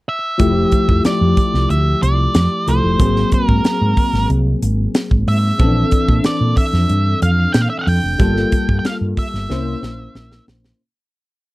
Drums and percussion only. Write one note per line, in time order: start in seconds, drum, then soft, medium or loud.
0.39 kick loud
0.39 closed hi-hat medium
0.72 kick medium
0.72 closed hi-hat medium
0.89 kick medium
1.05 snare loud
1.05 closed hi-hat medium
1.37 kick medium
1.37 closed hi-hat medium
1.54 snare soft
1.70 closed hi-hat medium
2.03 closed hi-hat medium
2.35 snare loud
2.35 closed hi-hat medium
2.68 closed hi-hat medium
3.00 kick loud
3.00 closed hi-hat medium
3.16 snare soft
3.32 kick medium
3.32 closed hi-hat medium
3.49 kick medium
3.65 snare medium
3.65 closed hi-hat medium
3.97 kick medium
3.97 open hi-hat medium
4.14 snare soft
4.30 closed hi-hat medium
4.62 closed hi-hat medium
4.95 snare loud
4.95 closed hi-hat medium
5.11 kick medium
5.28 open hi-hat medium
5.59 kick loud
5.59 closed hi-hat medium
5.91 kick medium
5.91 closed hi-hat medium
6.09 kick medium
6.24 snare loud
6.24 closed hi-hat medium
6.57 kick medium
6.57 open hi-hat medium
6.74 snare soft
6.90 closed hi-hat medium
7.22 closed hi-hat medium
7.54 snare loud
7.54 closed hi-hat medium
7.87 open hi-hat medium
8.20 kick loud
8.20 closed hi-hat medium
8.36 snare soft
8.52 kick medium
8.52 closed hi-hat medium
8.69 kick medium
8.85 snare medium
8.85 closed hi-hat medium
9.17 kick medium
9.17 open hi-hat medium
9.35 snare soft
9.50 snare soft
9.83 snare medium
10.15 snare medium
10.32 snare medium
10.48 snare medium
10.64 snare medium